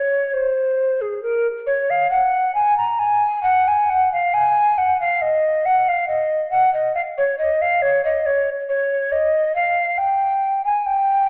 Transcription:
0, 0, Header, 1, 2, 480
1, 0, Start_track
1, 0, Tempo, 884956
1, 902, Time_signature, 4, 2, 24, 8
1, 2824, Tempo, 872093
1, 6175, End_track
2, 0, Start_track
2, 0, Title_t, "Recorder"
2, 0, Program_c, 0, 74
2, 0, Note_on_c, 0, 73, 69
2, 182, Note_on_c, 0, 72, 62
2, 190, Note_off_c, 0, 73, 0
2, 549, Note_on_c, 0, 68, 62
2, 558, Note_off_c, 0, 72, 0
2, 664, Note_off_c, 0, 68, 0
2, 667, Note_on_c, 0, 70, 73
2, 797, Note_off_c, 0, 70, 0
2, 903, Note_on_c, 0, 73, 85
2, 1031, Note_on_c, 0, 77, 69
2, 1039, Note_off_c, 0, 73, 0
2, 1138, Note_off_c, 0, 77, 0
2, 1141, Note_on_c, 0, 78, 71
2, 1376, Note_off_c, 0, 78, 0
2, 1381, Note_on_c, 0, 80, 70
2, 1500, Note_off_c, 0, 80, 0
2, 1507, Note_on_c, 0, 82, 67
2, 1622, Note_on_c, 0, 80, 74
2, 1630, Note_off_c, 0, 82, 0
2, 1856, Note_off_c, 0, 80, 0
2, 1860, Note_on_c, 0, 78, 88
2, 1994, Note_on_c, 0, 80, 70
2, 2002, Note_off_c, 0, 78, 0
2, 2114, Note_on_c, 0, 78, 68
2, 2122, Note_off_c, 0, 80, 0
2, 2231, Note_off_c, 0, 78, 0
2, 2238, Note_on_c, 0, 77, 71
2, 2353, Note_on_c, 0, 80, 85
2, 2361, Note_off_c, 0, 77, 0
2, 2593, Note_on_c, 0, 78, 77
2, 2601, Note_off_c, 0, 80, 0
2, 2709, Note_off_c, 0, 78, 0
2, 2715, Note_on_c, 0, 77, 79
2, 2830, Note_on_c, 0, 75, 78
2, 2838, Note_off_c, 0, 77, 0
2, 3070, Note_on_c, 0, 78, 74
2, 3079, Note_off_c, 0, 75, 0
2, 3196, Note_on_c, 0, 77, 68
2, 3204, Note_off_c, 0, 78, 0
2, 3301, Note_off_c, 0, 77, 0
2, 3305, Note_on_c, 0, 75, 81
2, 3535, Note_off_c, 0, 75, 0
2, 3542, Note_on_c, 0, 78, 76
2, 3657, Note_off_c, 0, 78, 0
2, 3667, Note_on_c, 0, 75, 72
2, 3780, Note_off_c, 0, 75, 0
2, 3784, Note_on_c, 0, 77, 88
2, 3817, Note_off_c, 0, 77, 0
2, 3909, Note_on_c, 0, 73, 75
2, 4019, Note_off_c, 0, 73, 0
2, 4022, Note_on_c, 0, 75, 72
2, 4150, Note_on_c, 0, 77, 83
2, 4158, Note_off_c, 0, 75, 0
2, 4262, Note_on_c, 0, 73, 92
2, 4271, Note_off_c, 0, 77, 0
2, 4383, Note_off_c, 0, 73, 0
2, 4388, Note_on_c, 0, 75, 73
2, 4503, Note_on_c, 0, 73, 78
2, 4512, Note_off_c, 0, 75, 0
2, 4635, Note_off_c, 0, 73, 0
2, 4742, Note_on_c, 0, 73, 86
2, 4978, Note_on_c, 0, 75, 83
2, 4986, Note_off_c, 0, 73, 0
2, 5215, Note_off_c, 0, 75, 0
2, 5217, Note_on_c, 0, 77, 79
2, 5451, Note_on_c, 0, 79, 89
2, 5459, Note_off_c, 0, 77, 0
2, 5817, Note_off_c, 0, 79, 0
2, 5822, Note_on_c, 0, 80, 70
2, 5937, Note_on_c, 0, 79, 75
2, 5946, Note_off_c, 0, 80, 0
2, 6175, Note_off_c, 0, 79, 0
2, 6175, End_track
0, 0, End_of_file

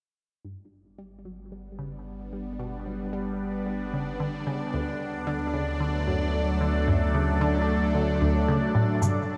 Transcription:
0, 0, Header, 1, 5, 480
1, 0, Start_track
1, 0, Key_signature, 1, "major"
1, 0, Tempo, 535714
1, 405, Time_signature, 4, 2, 24, 8
1, 8400, End_track
2, 0, Start_track
2, 0, Title_t, "Ambient pad"
2, 0, Program_c, 0, 92
2, 406, Note_on_c, 0, 55, 80
2, 497, Note_on_c, 0, 59, 82
2, 695, Note_on_c, 0, 62, 85
2, 1091, Note_on_c, 0, 74, 78
2, 1781, Note_on_c, 0, 71, 60
2, 4245, Note_off_c, 0, 55, 0
2, 4248, Note_on_c, 0, 54, 69
2, 4446, Note_on_c, 0, 69, 70
2, 4468, Note_on_c, 0, 57, 73
2, 4986, Note_off_c, 0, 71, 0
2, 5709, Note_off_c, 0, 59, 0
2, 8085, Note_on_c, 0, 55, 69
2, 8086, Note_off_c, 0, 54, 0
2, 8086, Note_off_c, 0, 57, 0
2, 8400, Note_off_c, 0, 55, 0
2, 8400, Note_off_c, 0, 62, 0
2, 8400, Note_off_c, 0, 69, 0
2, 8400, Note_off_c, 0, 74, 0
2, 8400, End_track
3, 0, Start_track
3, 0, Title_t, "Synth arpeggio sound"
3, 0, Program_c, 1, 84
3, 400, Note_on_c, 1, 43, 89
3, 490, Note_off_c, 1, 43, 0
3, 882, Note_on_c, 1, 55, 90
3, 971, Note_off_c, 1, 55, 0
3, 1121, Note_on_c, 1, 54, 71
3, 1211, Note_off_c, 1, 54, 0
3, 1362, Note_on_c, 1, 55, 72
3, 1509, Note_off_c, 1, 55, 0
3, 1601, Note_on_c, 1, 49, 80
3, 1691, Note_off_c, 1, 49, 0
3, 2085, Note_on_c, 1, 55, 72
3, 2304, Note_off_c, 1, 55, 0
3, 2324, Note_on_c, 1, 47, 94
3, 2412, Note_off_c, 1, 47, 0
3, 2563, Note_on_c, 1, 54, 70
3, 2783, Note_off_c, 1, 54, 0
3, 2804, Note_on_c, 1, 55, 92
3, 2892, Note_off_c, 1, 55, 0
3, 3283, Note_on_c, 1, 55, 76
3, 3430, Note_off_c, 1, 55, 0
3, 3524, Note_on_c, 1, 49, 81
3, 3612, Note_off_c, 1, 49, 0
3, 3763, Note_on_c, 1, 50, 99
3, 3852, Note_off_c, 1, 50, 0
3, 4003, Note_on_c, 1, 49, 93
3, 4091, Note_off_c, 1, 49, 0
3, 4244, Note_on_c, 1, 38, 93
3, 4332, Note_off_c, 1, 38, 0
3, 4721, Note_on_c, 1, 50, 94
3, 4811, Note_off_c, 1, 50, 0
3, 4961, Note_on_c, 1, 49, 69
3, 5051, Note_off_c, 1, 49, 0
3, 5201, Note_on_c, 1, 50, 76
3, 5349, Note_off_c, 1, 50, 0
3, 5442, Note_on_c, 1, 42, 83
3, 5531, Note_off_c, 1, 42, 0
3, 5921, Note_on_c, 1, 50, 71
3, 6142, Note_off_c, 1, 50, 0
3, 6163, Note_on_c, 1, 42, 94
3, 6252, Note_off_c, 1, 42, 0
3, 6402, Note_on_c, 1, 49, 71
3, 6623, Note_off_c, 1, 49, 0
3, 6642, Note_on_c, 1, 50, 95
3, 6731, Note_off_c, 1, 50, 0
3, 7122, Note_on_c, 1, 50, 76
3, 7269, Note_off_c, 1, 50, 0
3, 7360, Note_on_c, 1, 38, 83
3, 7508, Note_off_c, 1, 38, 0
3, 7602, Note_on_c, 1, 49, 100
3, 7691, Note_off_c, 1, 49, 0
3, 7839, Note_on_c, 1, 45, 94
3, 7930, Note_off_c, 1, 45, 0
3, 8080, Note_on_c, 1, 43, 90
3, 8170, Note_off_c, 1, 43, 0
3, 8400, End_track
4, 0, Start_track
4, 0, Title_t, "Sub bass"
4, 0, Program_c, 2, 38
4, 404, Note_on_c, 2, 31, 76
4, 4220, Note_off_c, 2, 31, 0
4, 4245, Note_on_c, 2, 38, 82
4, 8061, Note_off_c, 2, 38, 0
4, 8400, End_track
5, 0, Start_track
5, 0, Title_t, "Drums"
5, 8085, Note_on_c, 9, 48, 39
5, 8085, Note_on_c, 9, 82, 56
5, 8174, Note_off_c, 9, 48, 0
5, 8174, Note_off_c, 9, 82, 0
5, 8400, End_track
0, 0, End_of_file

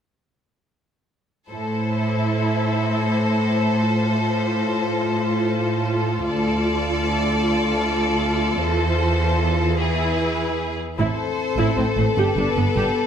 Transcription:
0, 0, Header, 1, 7, 480
1, 0, Start_track
1, 0, Key_signature, 0, "minor"
1, 0, Tempo, 395517
1, 1830, Time_signature, 12, 3, 24, 8
1, 15861, End_track
2, 0, Start_track
2, 0, Title_t, "Violin section"
2, 0, Program_c, 0, 48
2, 1823, Note_on_c, 0, 72, 32
2, 7531, Note_off_c, 0, 72, 0
2, 7574, Note_on_c, 0, 74, 42
2, 10439, Note_off_c, 0, 74, 0
2, 10466, Note_on_c, 0, 72, 46
2, 11892, Note_off_c, 0, 72, 0
2, 11900, Note_on_c, 0, 71, 40
2, 13098, Note_off_c, 0, 71, 0
2, 13329, Note_on_c, 0, 72, 39
2, 14727, Note_off_c, 0, 72, 0
2, 14778, Note_on_c, 0, 71, 37
2, 15861, Note_off_c, 0, 71, 0
2, 15861, End_track
3, 0, Start_track
3, 0, Title_t, "Violin section"
3, 0, Program_c, 1, 48
3, 1808, Note_on_c, 1, 69, 32
3, 7524, Note_off_c, 1, 69, 0
3, 7594, Note_on_c, 1, 69, 45
3, 11837, Note_off_c, 1, 69, 0
3, 11874, Note_on_c, 1, 68, 42
3, 13061, Note_off_c, 1, 68, 0
3, 13328, Note_on_c, 1, 69, 41
3, 15861, Note_off_c, 1, 69, 0
3, 15861, End_track
4, 0, Start_track
4, 0, Title_t, "Viola section"
4, 0, Program_c, 2, 48
4, 1836, Note_on_c, 2, 64, 31
4, 4670, Note_off_c, 2, 64, 0
4, 4714, Note_on_c, 2, 65, 34
4, 11831, Note_off_c, 2, 65, 0
4, 11906, Note_on_c, 2, 64, 44
4, 13101, Note_off_c, 2, 64, 0
4, 13343, Note_on_c, 2, 64, 39
4, 13562, Note_off_c, 2, 64, 0
4, 14049, Note_on_c, 2, 64, 44
4, 14275, Note_off_c, 2, 64, 0
4, 14289, Note_on_c, 2, 60, 28
4, 14386, Note_off_c, 2, 60, 0
4, 14534, Note_on_c, 2, 57, 33
4, 14630, Note_off_c, 2, 57, 0
4, 14788, Note_on_c, 2, 67, 42
4, 15006, Note_off_c, 2, 67, 0
4, 15040, Note_on_c, 2, 62, 29
4, 15131, Note_off_c, 2, 62, 0
4, 15269, Note_on_c, 2, 59, 36
4, 15362, Note_off_c, 2, 59, 0
4, 15485, Note_on_c, 2, 67, 43
4, 15713, Note_off_c, 2, 67, 0
4, 15861, End_track
5, 0, Start_track
5, 0, Title_t, "French horn section"
5, 0, Program_c, 3, 60
5, 13344, Note_on_c, 3, 60, 43
5, 13348, Note_on_c, 3, 69, 49
5, 14734, Note_off_c, 3, 60, 0
5, 14765, Note_on_c, 3, 59, 48
5, 15861, Note_off_c, 3, 59, 0
5, 15861, Note_off_c, 3, 69, 0
5, 15861, End_track
6, 0, Start_track
6, 0, Title_t, "Cello section"
6, 0, Program_c, 4, 48
6, 1821, Note_on_c, 4, 45, 40
6, 7530, Note_off_c, 4, 45, 0
6, 7592, Note_on_c, 4, 38, 42
6, 10399, Note_off_c, 4, 38, 0
6, 10442, Note_on_c, 4, 40, 50
6, 13087, Note_off_c, 4, 40, 0
6, 13343, Note_on_c, 4, 45, 50
6, 13437, Note_off_c, 4, 45, 0
6, 14057, Note_on_c, 4, 45, 47
6, 14153, Note_off_c, 4, 45, 0
6, 14290, Note_on_c, 4, 45, 29
6, 14387, Note_off_c, 4, 45, 0
6, 14529, Note_on_c, 4, 45, 35
6, 14626, Note_off_c, 4, 45, 0
6, 14768, Note_on_c, 4, 43, 43
6, 14866, Note_off_c, 4, 43, 0
6, 15008, Note_on_c, 4, 43, 36
6, 15105, Note_off_c, 4, 43, 0
6, 15248, Note_on_c, 4, 43, 39
6, 15345, Note_off_c, 4, 43, 0
6, 15475, Note_on_c, 4, 43, 44
6, 15572, Note_off_c, 4, 43, 0
6, 15861, End_track
7, 0, Start_track
7, 0, Title_t, "Double bass section"
7, 0, Program_c, 5, 48
7, 13334, Note_on_c, 5, 33, 36
7, 13430, Note_off_c, 5, 33, 0
7, 14040, Note_on_c, 5, 33, 46
7, 14137, Note_off_c, 5, 33, 0
7, 14288, Note_on_c, 5, 33, 28
7, 14385, Note_off_c, 5, 33, 0
7, 14532, Note_on_c, 5, 33, 34
7, 14629, Note_off_c, 5, 33, 0
7, 14763, Note_on_c, 5, 31, 46
7, 14860, Note_off_c, 5, 31, 0
7, 15003, Note_on_c, 5, 31, 32
7, 15100, Note_off_c, 5, 31, 0
7, 15245, Note_on_c, 5, 31, 33
7, 15342, Note_off_c, 5, 31, 0
7, 15486, Note_on_c, 5, 31, 42
7, 15583, Note_off_c, 5, 31, 0
7, 15861, End_track
0, 0, End_of_file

